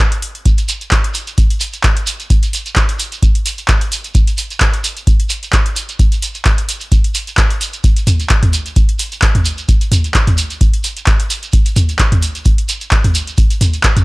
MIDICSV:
0, 0, Header, 1, 3, 480
1, 0, Start_track
1, 0, Tempo, 461538
1, 473, Time_signature, 4, 2, 24, 8
1, 14608, End_track
2, 0, Start_track
2, 0, Title_t, "Shekere"
2, 480, Note_on_c, 9, 82, 54
2, 584, Note_off_c, 9, 82, 0
2, 602, Note_on_c, 9, 82, 38
2, 706, Note_off_c, 9, 82, 0
2, 715, Note_on_c, 9, 82, 94
2, 819, Note_off_c, 9, 82, 0
2, 843, Note_on_c, 9, 82, 35
2, 947, Note_off_c, 9, 82, 0
2, 952, Note_on_c, 9, 82, 52
2, 1056, Note_off_c, 9, 82, 0
2, 1188, Note_on_c, 9, 82, 89
2, 1292, Note_off_c, 9, 82, 0
2, 1323, Note_on_c, 9, 82, 41
2, 1427, Note_off_c, 9, 82, 0
2, 1434, Note_on_c, 9, 82, 47
2, 1538, Note_off_c, 9, 82, 0
2, 1666, Note_on_c, 9, 82, 99
2, 1770, Note_off_c, 9, 82, 0
2, 1799, Note_on_c, 9, 82, 38
2, 1903, Note_off_c, 9, 82, 0
2, 1913, Note_on_c, 9, 82, 53
2, 2017, Note_off_c, 9, 82, 0
2, 2149, Note_on_c, 9, 82, 87
2, 2253, Note_off_c, 9, 82, 0
2, 2289, Note_on_c, 9, 82, 40
2, 2393, Note_off_c, 9, 82, 0
2, 2397, Note_on_c, 9, 82, 57
2, 2501, Note_off_c, 9, 82, 0
2, 2526, Note_on_c, 9, 82, 39
2, 2630, Note_off_c, 9, 82, 0
2, 2641, Note_on_c, 9, 82, 86
2, 2745, Note_off_c, 9, 82, 0
2, 2767, Note_on_c, 9, 82, 42
2, 2871, Note_off_c, 9, 82, 0
2, 2872, Note_on_c, 9, 82, 54
2, 2976, Note_off_c, 9, 82, 0
2, 3114, Note_on_c, 9, 82, 91
2, 3218, Note_off_c, 9, 82, 0
2, 3247, Note_on_c, 9, 82, 40
2, 3351, Note_off_c, 9, 82, 0
2, 3359, Note_on_c, 9, 82, 52
2, 3463, Note_off_c, 9, 82, 0
2, 3599, Note_on_c, 9, 82, 87
2, 3703, Note_off_c, 9, 82, 0
2, 3722, Note_on_c, 9, 82, 37
2, 3826, Note_off_c, 9, 82, 0
2, 3838, Note_on_c, 9, 82, 47
2, 3942, Note_off_c, 9, 82, 0
2, 4079, Note_on_c, 9, 82, 90
2, 4183, Note_off_c, 9, 82, 0
2, 4205, Note_on_c, 9, 82, 39
2, 4309, Note_off_c, 9, 82, 0
2, 4313, Note_on_c, 9, 82, 60
2, 4417, Note_off_c, 9, 82, 0
2, 4448, Note_on_c, 9, 82, 36
2, 4552, Note_off_c, 9, 82, 0
2, 4552, Note_on_c, 9, 82, 87
2, 4656, Note_off_c, 9, 82, 0
2, 4688, Note_on_c, 9, 82, 43
2, 4788, Note_off_c, 9, 82, 0
2, 4788, Note_on_c, 9, 82, 57
2, 4892, Note_off_c, 9, 82, 0
2, 5037, Note_on_c, 9, 82, 92
2, 5141, Note_off_c, 9, 82, 0
2, 5168, Note_on_c, 9, 82, 39
2, 5272, Note_off_c, 9, 82, 0
2, 5278, Note_on_c, 9, 82, 53
2, 5382, Note_off_c, 9, 82, 0
2, 5506, Note_on_c, 9, 82, 103
2, 5610, Note_off_c, 9, 82, 0
2, 5648, Note_on_c, 9, 82, 45
2, 5752, Note_off_c, 9, 82, 0
2, 5752, Note_on_c, 9, 82, 46
2, 5856, Note_off_c, 9, 82, 0
2, 5992, Note_on_c, 9, 82, 87
2, 6096, Note_off_c, 9, 82, 0
2, 6126, Note_on_c, 9, 82, 42
2, 6230, Note_off_c, 9, 82, 0
2, 6235, Note_on_c, 9, 82, 50
2, 6339, Note_off_c, 9, 82, 0
2, 6373, Note_on_c, 9, 82, 42
2, 6476, Note_off_c, 9, 82, 0
2, 6476, Note_on_c, 9, 82, 83
2, 6580, Note_off_c, 9, 82, 0
2, 6600, Note_on_c, 9, 82, 39
2, 6704, Note_off_c, 9, 82, 0
2, 6716, Note_on_c, 9, 82, 57
2, 6820, Note_off_c, 9, 82, 0
2, 6959, Note_on_c, 9, 82, 82
2, 7063, Note_off_c, 9, 82, 0
2, 7073, Note_on_c, 9, 82, 38
2, 7177, Note_off_c, 9, 82, 0
2, 7197, Note_on_c, 9, 82, 52
2, 7301, Note_off_c, 9, 82, 0
2, 7432, Note_on_c, 9, 82, 93
2, 7536, Note_off_c, 9, 82, 0
2, 7569, Note_on_c, 9, 82, 38
2, 7673, Note_off_c, 9, 82, 0
2, 7673, Note_on_c, 9, 82, 45
2, 7777, Note_off_c, 9, 82, 0
2, 7916, Note_on_c, 9, 82, 92
2, 8020, Note_off_c, 9, 82, 0
2, 8041, Note_on_c, 9, 82, 44
2, 8145, Note_off_c, 9, 82, 0
2, 8153, Note_on_c, 9, 82, 56
2, 8257, Note_off_c, 9, 82, 0
2, 8297, Note_on_c, 9, 82, 40
2, 8396, Note_off_c, 9, 82, 0
2, 8396, Note_on_c, 9, 82, 83
2, 8500, Note_off_c, 9, 82, 0
2, 8526, Note_on_c, 9, 82, 35
2, 8630, Note_off_c, 9, 82, 0
2, 8631, Note_on_c, 9, 82, 55
2, 8735, Note_off_c, 9, 82, 0
2, 8875, Note_on_c, 9, 82, 88
2, 8979, Note_off_c, 9, 82, 0
2, 9008, Note_on_c, 9, 82, 38
2, 9112, Note_off_c, 9, 82, 0
2, 9112, Note_on_c, 9, 82, 48
2, 9216, Note_off_c, 9, 82, 0
2, 9352, Note_on_c, 9, 82, 94
2, 9456, Note_off_c, 9, 82, 0
2, 9485, Note_on_c, 9, 82, 40
2, 9589, Note_off_c, 9, 82, 0
2, 9594, Note_on_c, 9, 82, 46
2, 9698, Note_off_c, 9, 82, 0
2, 9829, Note_on_c, 9, 82, 89
2, 9933, Note_off_c, 9, 82, 0
2, 9963, Note_on_c, 9, 82, 42
2, 10067, Note_off_c, 9, 82, 0
2, 10073, Note_on_c, 9, 82, 55
2, 10177, Note_off_c, 9, 82, 0
2, 10205, Note_on_c, 9, 82, 38
2, 10309, Note_off_c, 9, 82, 0
2, 10323, Note_on_c, 9, 82, 88
2, 10427, Note_off_c, 9, 82, 0
2, 10447, Note_on_c, 9, 82, 37
2, 10551, Note_off_c, 9, 82, 0
2, 10560, Note_on_c, 9, 82, 48
2, 10664, Note_off_c, 9, 82, 0
2, 10792, Note_on_c, 9, 82, 91
2, 10896, Note_off_c, 9, 82, 0
2, 10921, Note_on_c, 9, 82, 40
2, 11025, Note_off_c, 9, 82, 0
2, 11033, Note_on_c, 9, 82, 44
2, 11137, Note_off_c, 9, 82, 0
2, 11274, Note_on_c, 9, 82, 92
2, 11378, Note_off_c, 9, 82, 0
2, 11411, Note_on_c, 9, 82, 35
2, 11515, Note_off_c, 9, 82, 0
2, 11517, Note_on_c, 9, 82, 49
2, 11621, Note_off_c, 9, 82, 0
2, 11756, Note_on_c, 9, 82, 91
2, 11860, Note_off_c, 9, 82, 0
2, 11886, Note_on_c, 9, 82, 38
2, 11985, Note_off_c, 9, 82, 0
2, 11985, Note_on_c, 9, 82, 50
2, 12089, Note_off_c, 9, 82, 0
2, 12123, Note_on_c, 9, 82, 38
2, 12227, Note_off_c, 9, 82, 0
2, 12231, Note_on_c, 9, 82, 84
2, 12335, Note_off_c, 9, 82, 0
2, 12367, Note_on_c, 9, 82, 35
2, 12471, Note_off_c, 9, 82, 0
2, 12473, Note_on_c, 9, 82, 49
2, 12577, Note_off_c, 9, 82, 0
2, 12714, Note_on_c, 9, 82, 73
2, 12818, Note_off_c, 9, 82, 0
2, 12847, Note_on_c, 9, 82, 36
2, 12946, Note_off_c, 9, 82, 0
2, 12946, Note_on_c, 9, 82, 49
2, 13050, Note_off_c, 9, 82, 0
2, 13196, Note_on_c, 9, 82, 89
2, 13300, Note_off_c, 9, 82, 0
2, 13320, Note_on_c, 9, 82, 38
2, 13424, Note_off_c, 9, 82, 0
2, 13433, Note_on_c, 9, 82, 45
2, 13537, Note_off_c, 9, 82, 0
2, 13674, Note_on_c, 9, 82, 94
2, 13778, Note_off_c, 9, 82, 0
2, 13807, Note_on_c, 9, 82, 36
2, 13909, Note_off_c, 9, 82, 0
2, 13909, Note_on_c, 9, 82, 51
2, 14013, Note_off_c, 9, 82, 0
2, 14050, Note_on_c, 9, 82, 37
2, 14154, Note_off_c, 9, 82, 0
2, 14161, Note_on_c, 9, 82, 91
2, 14265, Note_off_c, 9, 82, 0
2, 14283, Note_on_c, 9, 82, 42
2, 14387, Note_off_c, 9, 82, 0
2, 14390, Note_on_c, 9, 82, 57
2, 14494, Note_off_c, 9, 82, 0
2, 14531, Note_on_c, 9, 82, 39
2, 14608, Note_off_c, 9, 82, 0
2, 14608, End_track
3, 0, Start_track
3, 0, Title_t, "Drums"
3, 124, Note_on_c, 9, 42, 56
3, 228, Note_off_c, 9, 42, 0
3, 233, Note_on_c, 9, 46, 97
3, 337, Note_off_c, 9, 46, 0
3, 364, Note_on_c, 9, 42, 37
3, 468, Note_off_c, 9, 42, 0
3, 473, Note_on_c, 9, 42, 79
3, 474, Note_on_c, 9, 36, 117
3, 577, Note_off_c, 9, 42, 0
3, 578, Note_off_c, 9, 36, 0
3, 604, Note_on_c, 9, 42, 55
3, 708, Note_off_c, 9, 42, 0
3, 713, Note_on_c, 9, 46, 104
3, 817, Note_off_c, 9, 46, 0
3, 844, Note_on_c, 9, 42, 36
3, 948, Note_off_c, 9, 42, 0
3, 948, Note_on_c, 9, 39, 118
3, 954, Note_on_c, 9, 36, 99
3, 954, Note_on_c, 9, 42, 76
3, 1052, Note_off_c, 9, 39, 0
3, 1058, Note_off_c, 9, 36, 0
3, 1058, Note_off_c, 9, 42, 0
3, 1085, Note_on_c, 9, 42, 55
3, 1189, Note_off_c, 9, 42, 0
3, 1194, Note_on_c, 9, 46, 99
3, 1298, Note_off_c, 9, 46, 0
3, 1324, Note_on_c, 9, 42, 37
3, 1428, Note_off_c, 9, 42, 0
3, 1433, Note_on_c, 9, 42, 83
3, 1434, Note_on_c, 9, 36, 119
3, 1537, Note_off_c, 9, 42, 0
3, 1538, Note_off_c, 9, 36, 0
3, 1565, Note_on_c, 9, 42, 54
3, 1669, Note_off_c, 9, 42, 0
3, 1674, Note_on_c, 9, 46, 108
3, 1778, Note_off_c, 9, 46, 0
3, 1805, Note_on_c, 9, 42, 39
3, 1908, Note_on_c, 9, 39, 127
3, 1909, Note_off_c, 9, 42, 0
3, 1914, Note_on_c, 9, 36, 113
3, 1914, Note_on_c, 9, 42, 81
3, 2012, Note_off_c, 9, 39, 0
3, 2018, Note_off_c, 9, 36, 0
3, 2018, Note_off_c, 9, 42, 0
3, 2045, Note_on_c, 9, 42, 54
3, 2149, Note_off_c, 9, 42, 0
3, 2154, Note_on_c, 9, 46, 102
3, 2258, Note_off_c, 9, 46, 0
3, 2285, Note_on_c, 9, 42, 36
3, 2389, Note_off_c, 9, 42, 0
3, 2394, Note_on_c, 9, 36, 123
3, 2394, Note_on_c, 9, 42, 80
3, 2498, Note_off_c, 9, 36, 0
3, 2498, Note_off_c, 9, 42, 0
3, 2525, Note_on_c, 9, 42, 53
3, 2629, Note_off_c, 9, 42, 0
3, 2634, Note_on_c, 9, 46, 104
3, 2738, Note_off_c, 9, 46, 0
3, 2765, Note_on_c, 9, 42, 35
3, 2868, Note_on_c, 9, 39, 122
3, 2869, Note_off_c, 9, 42, 0
3, 2874, Note_on_c, 9, 36, 103
3, 2874, Note_on_c, 9, 42, 75
3, 2972, Note_off_c, 9, 39, 0
3, 2978, Note_off_c, 9, 36, 0
3, 2978, Note_off_c, 9, 42, 0
3, 3005, Note_on_c, 9, 42, 57
3, 3109, Note_off_c, 9, 42, 0
3, 3114, Note_on_c, 9, 46, 111
3, 3218, Note_off_c, 9, 46, 0
3, 3246, Note_on_c, 9, 42, 37
3, 3350, Note_off_c, 9, 42, 0
3, 3354, Note_on_c, 9, 36, 126
3, 3355, Note_on_c, 9, 42, 79
3, 3458, Note_off_c, 9, 36, 0
3, 3459, Note_off_c, 9, 42, 0
3, 3485, Note_on_c, 9, 42, 50
3, 3589, Note_off_c, 9, 42, 0
3, 3595, Note_on_c, 9, 46, 107
3, 3699, Note_off_c, 9, 46, 0
3, 3725, Note_on_c, 9, 42, 38
3, 3828, Note_on_c, 9, 39, 124
3, 3829, Note_off_c, 9, 42, 0
3, 3834, Note_on_c, 9, 36, 111
3, 3834, Note_on_c, 9, 42, 79
3, 3932, Note_off_c, 9, 39, 0
3, 3938, Note_off_c, 9, 36, 0
3, 3938, Note_off_c, 9, 42, 0
3, 3965, Note_on_c, 9, 42, 54
3, 4069, Note_off_c, 9, 42, 0
3, 4075, Note_on_c, 9, 46, 111
3, 4179, Note_off_c, 9, 46, 0
3, 4205, Note_on_c, 9, 42, 36
3, 4309, Note_off_c, 9, 42, 0
3, 4314, Note_on_c, 9, 36, 126
3, 4314, Note_on_c, 9, 42, 80
3, 4418, Note_off_c, 9, 36, 0
3, 4418, Note_off_c, 9, 42, 0
3, 4445, Note_on_c, 9, 42, 51
3, 4549, Note_off_c, 9, 42, 0
3, 4554, Note_on_c, 9, 46, 106
3, 4658, Note_off_c, 9, 46, 0
3, 4685, Note_on_c, 9, 42, 33
3, 4788, Note_on_c, 9, 39, 123
3, 4789, Note_off_c, 9, 42, 0
3, 4794, Note_on_c, 9, 36, 105
3, 4794, Note_on_c, 9, 42, 71
3, 4892, Note_off_c, 9, 39, 0
3, 4898, Note_off_c, 9, 36, 0
3, 4898, Note_off_c, 9, 42, 0
3, 4925, Note_on_c, 9, 42, 50
3, 5029, Note_off_c, 9, 42, 0
3, 5034, Note_on_c, 9, 46, 107
3, 5138, Note_off_c, 9, 46, 0
3, 5165, Note_on_c, 9, 42, 36
3, 5269, Note_off_c, 9, 42, 0
3, 5274, Note_on_c, 9, 36, 127
3, 5274, Note_on_c, 9, 42, 81
3, 5378, Note_off_c, 9, 36, 0
3, 5378, Note_off_c, 9, 42, 0
3, 5405, Note_on_c, 9, 42, 52
3, 5509, Note_off_c, 9, 42, 0
3, 5514, Note_on_c, 9, 46, 108
3, 5618, Note_off_c, 9, 46, 0
3, 5645, Note_on_c, 9, 42, 36
3, 5748, Note_on_c, 9, 39, 114
3, 5749, Note_off_c, 9, 42, 0
3, 5754, Note_on_c, 9, 36, 111
3, 5754, Note_on_c, 9, 42, 77
3, 5852, Note_off_c, 9, 39, 0
3, 5858, Note_off_c, 9, 36, 0
3, 5858, Note_off_c, 9, 42, 0
3, 5885, Note_on_c, 9, 42, 52
3, 5989, Note_off_c, 9, 42, 0
3, 5994, Note_on_c, 9, 46, 105
3, 6098, Note_off_c, 9, 46, 0
3, 6124, Note_on_c, 9, 42, 35
3, 6228, Note_off_c, 9, 42, 0
3, 6234, Note_on_c, 9, 36, 119
3, 6234, Note_on_c, 9, 42, 74
3, 6338, Note_off_c, 9, 36, 0
3, 6338, Note_off_c, 9, 42, 0
3, 6364, Note_on_c, 9, 42, 48
3, 6468, Note_off_c, 9, 42, 0
3, 6473, Note_on_c, 9, 46, 109
3, 6577, Note_off_c, 9, 46, 0
3, 6604, Note_on_c, 9, 42, 32
3, 6707, Note_on_c, 9, 39, 110
3, 6708, Note_off_c, 9, 42, 0
3, 6714, Note_on_c, 9, 36, 101
3, 6714, Note_on_c, 9, 42, 74
3, 6811, Note_off_c, 9, 39, 0
3, 6818, Note_off_c, 9, 36, 0
3, 6818, Note_off_c, 9, 42, 0
3, 6844, Note_on_c, 9, 42, 54
3, 6948, Note_off_c, 9, 42, 0
3, 6954, Note_on_c, 9, 46, 113
3, 7058, Note_off_c, 9, 46, 0
3, 7084, Note_on_c, 9, 42, 34
3, 7188, Note_off_c, 9, 42, 0
3, 7194, Note_on_c, 9, 36, 120
3, 7194, Note_on_c, 9, 42, 74
3, 7298, Note_off_c, 9, 36, 0
3, 7298, Note_off_c, 9, 42, 0
3, 7325, Note_on_c, 9, 42, 50
3, 7429, Note_off_c, 9, 42, 0
3, 7434, Note_on_c, 9, 46, 109
3, 7538, Note_off_c, 9, 46, 0
3, 7564, Note_on_c, 9, 42, 35
3, 7668, Note_off_c, 9, 42, 0
3, 7668, Note_on_c, 9, 39, 120
3, 7674, Note_on_c, 9, 36, 117
3, 7674, Note_on_c, 9, 42, 79
3, 7772, Note_off_c, 9, 39, 0
3, 7778, Note_off_c, 9, 36, 0
3, 7778, Note_off_c, 9, 42, 0
3, 7805, Note_on_c, 9, 42, 50
3, 7909, Note_off_c, 9, 42, 0
3, 7914, Note_on_c, 9, 46, 109
3, 8018, Note_off_c, 9, 46, 0
3, 8044, Note_on_c, 9, 42, 35
3, 8148, Note_off_c, 9, 42, 0
3, 8153, Note_on_c, 9, 36, 114
3, 8153, Note_on_c, 9, 42, 76
3, 8257, Note_off_c, 9, 36, 0
3, 8257, Note_off_c, 9, 42, 0
3, 8284, Note_on_c, 9, 42, 51
3, 8388, Note_off_c, 9, 42, 0
3, 8393, Note_on_c, 9, 45, 95
3, 8393, Note_on_c, 9, 46, 105
3, 8497, Note_off_c, 9, 45, 0
3, 8497, Note_off_c, 9, 46, 0
3, 8524, Note_on_c, 9, 42, 35
3, 8627, Note_on_c, 9, 39, 111
3, 8628, Note_off_c, 9, 42, 0
3, 8633, Note_on_c, 9, 36, 99
3, 8633, Note_on_c, 9, 42, 77
3, 8731, Note_off_c, 9, 39, 0
3, 8737, Note_off_c, 9, 36, 0
3, 8737, Note_off_c, 9, 42, 0
3, 8764, Note_on_c, 9, 42, 48
3, 8764, Note_on_c, 9, 45, 98
3, 8868, Note_off_c, 9, 42, 0
3, 8868, Note_off_c, 9, 45, 0
3, 8873, Note_on_c, 9, 46, 106
3, 8977, Note_off_c, 9, 46, 0
3, 9004, Note_on_c, 9, 42, 35
3, 9108, Note_off_c, 9, 42, 0
3, 9113, Note_on_c, 9, 36, 121
3, 9113, Note_on_c, 9, 42, 75
3, 9217, Note_off_c, 9, 36, 0
3, 9217, Note_off_c, 9, 42, 0
3, 9244, Note_on_c, 9, 42, 51
3, 9348, Note_off_c, 9, 42, 0
3, 9353, Note_on_c, 9, 46, 100
3, 9457, Note_off_c, 9, 46, 0
3, 9484, Note_on_c, 9, 42, 37
3, 9587, Note_on_c, 9, 39, 113
3, 9588, Note_off_c, 9, 42, 0
3, 9593, Note_on_c, 9, 42, 76
3, 9594, Note_on_c, 9, 36, 109
3, 9691, Note_off_c, 9, 39, 0
3, 9697, Note_off_c, 9, 42, 0
3, 9698, Note_off_c, 9, 36, 0
3, 9724, Note_on_c, 9, 42, 49
3, 9724, Note_on_c, 9, 45, 89
3, 9828, Note_off_c, 9, 42, 0
3, 9828, Note_off_c, 9, 45, 0
3, 9833, Note_on_c, 9, 46, 104
3, 9937, Note_off_c, 9, 46, 0
3, 9964, Note_on_c, 9, 42, 34
3, 10068, Note_off_c, 9, 42, 0
3, 10073, Note_on_c, 9, 36, 110
3, 10074, Note_on_c, 9, 42, 73
3, 10177, Note_off_c, 9, 36, 0
3, 10178, Note_off_c, 9, 42, 0
3, 10204, Note_on_c, 9, 42, 53
3, 10308, Note_off_c, 9, 42, 0
3, 10313, Note_on_c, 9, 45, 90
3, 10313, Note_on_c, 9, 46, 101
3, 10417, Note_off_c, 9, 45, 0
3, 10417, Note_off_c, 9, 46, 0
3, 10444, Note_on_c, 9, 42, 36
3, 10548, Note_off_c, 9, 42, 0
3, 10548, Note_on_c, 9, 39, 112
3, 10554, Note_on_c, 9, 36, 94
3, 10554, Note_on_c, 9, 42, 77
3, 10652, Note_off_c, 9, 39, 0
3, 10658, Note_off_c, 9, 36, 0
3, 10658, Note_off_c, 9, 42, 0
3, 10684, Note_on_c, 9, 42, 53
3, 10684, Note_on_c, 9, 45, 98
3, 10788, Note_off_c, 9, 42, 0
3, 10788, Note_off_c, 9, 45, 0
3, 10794, Note_on_c, 9, 46, 101
3, 10898, Note_off_c, 9, 46, 0
3, 10924, Note_on_c, 9, 42, 37
3, 11028, Note_off_c, 9, 42, 0
3, 11034, Note_on_c, 9, 36, 115
3, 11034, Note_on_c, 9, 42, 79
3, 11138, Note_off_c, 9, 36, 0
3, 11138, Note_off_c, 9, 42, 0
3, 11165, Note_on_c, 9, 42, 51
3, 11269, Note_off_c, 9, 42, 0
3, 11274, Note_on_c, 9, 46, 100
3, 11378, Note_off_c, 9, 46, 0
3, 11404, Note_on_c, 9, 42, 38
3, 11507, Note_on_c, 9, 39, 108
3, 11508, Note_off_c, 9, 42, 0
3, 11513, Note_on_c, 9, 42, 79
3, 11514, Note_on_c, 9, 36, 110
3, 11611, Note_off_c, 9, 39, 0
3, 11617, Note_off_c, 9, 42, 0
3, 11618, Note_off_c, 9, 36, 0
3, 11645, Note_on_c, 9, 42, 53
3, 11749, Note_off_c, 9, 42, 0
3, 11754, Note_on_c, 9, 46, 98
3, 11858, Note_off_c, 9, 46, 0
3, 11885, Note_on_c, 9, 42, 36
3, 11989, Note_off_c, 9, 42, 0
3, 11994, Note_on_c, 9, 36, 116
3, 11994, Note_on_c, 9, 42, 83
3, 12098, Note_off_c, 9, 36, 0
3, 12098, Note_off_c, 9, 42, 0
3, 12125, Note_on_c, 9, 42, 56
3, 12229, Note_off_c, 9, 42, 0
3, 12234, Note_on_c, 9, 45, 94
3, 12234, Note_on_c, 9, 46, 99
3, 12338, Note_off_c, 9, 45, 0
3, 12338, Note_off_c, 9, 46, 0
3, 12365, Note_on_c, 9, 42, 37
3, 12468, Note_on_c, 9, 39, 118
3, 12469, Note_off_c, 9, 42, 0
3, 12474, Note_on_c, 9, 36, 98
3, 12474, Note_on_c, 9, 42, 81
3, 12572, Note_off_c, 9, 39, 0
3, 12578, Note_off_c, 9, 36, 0
3, 12578, Note_off_c, 9, 42, 0
3, 12605, Note_on_c, 9, 42, 54
3, 12605, Note_on_c, 9, 45, 98
3, 12709, Note_off_c, 9, 42, 0
3, 12709, Note_off_c, 9, 45, 0
3, 12713, Note_on_c, 9, 46, 102
3, 12817, Note_off_c, 9, 46, 0
3, 12845, Note_on_c, 9, 42, 39
3, 12949, Note_off_c, 9, 42, 0
3, 12954, Note_on_c, 9, 36, 111
3, 12954, Note_on_c, 9, 42, 83
3, 13058, Note_off_c, 9, 36, 0
3, 13058, Note_off_c, 9, 42, 0
3, 13086, Note_on_c, 9, 42, 52
3, 13190, Note_off_c, 9, 42, 0
3, 13195, Note_on_c, 9, 46, 100
3, 13299, Note_off_c, 9, 46, 0
3, 13326, Note_on_c, 9, 42, 37
3, 13428, Note_on_c, 9, 39, 114
3, 13430, Note_off_c, 9, 42, 0
3, 13434, Note_on_c, 9, 36, 102
3, 13435, Note_on_c, 9, 42, 83
3, 13532, Note_off_c, 9, 39, 0
3, 13538, Note_off_c, 9, 36, 0
3, 13539, Note_off_c, 9, 42, 0
3, 13566, Note_on_c, 9, 42, 54
3, 13566, Note_on_c, 9, 45, 85
3, 13670, Note_off_c, 9, 42, 0
3, 13670, Note_off_c, 9, 45, 0
3, 13675, Note_on_c, 9, 46, 97
3, 13779, Note_off_c, 9, 46, 0
3, 13805, Note_on_c, 9, 42, 37
3, 13909, Note_off_c, 9, 42, 0
3, 13914, Note_on_c, 9, 36, 115
3, 13914, Note_on_c, 9, 42, 84
3, 14018, Note_off_c, 9, 36, 0
3, 14018, Note_off_c, 9, 42, 0
3, 14045, Note_on_c, 9, 42, 54
3, 14149, Note_off_c, 9, 42, 0
3, 14154, Note_on_c, 9, 45, 88
3, 14154, Note_on_c, 9, 46, 103
3, 14258, Note_off_c, 9, 45, 0
3, 14258, Note_off_c, 9, 46, 0
3, 14285, Note_on_c, 9, 42, 35
3, 14388, Note_on_c, 9, 39, 124
3, 14389, Note_off_c, 9, 42, 0
3, 14394, Note_on_c, 9, 36, 97
3, 14394, Note_on_c, 9, 42, 83
3, 14492, Note_off_c, 9, 39, 0
3, 14498, Note_off_c, 9, 36, 0
3, 14498, Note_off_c, 9, 42, 0
3, 14524, Note_on_c, 9, 42, 56
3, 14524, Note_on_c, 9, 45, 95
3, 14608, Note_off_c, 9, 42, 0
3, 14608, Note_off_c, 9, 45, 0
3, 14608, End_track
0, 0, End_of_file